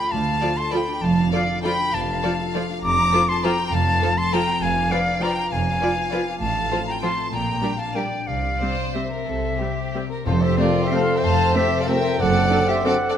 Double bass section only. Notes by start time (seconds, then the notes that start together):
0.12 D2
1.03 F1
1.93 F1
2.84 F1
3.73 F1
4.62 F1
5.52 F1
6.41 A1
7.32 A#1
8.28 C2
9.28 C2
10.26 F1
11.24 F1
12.21 F#1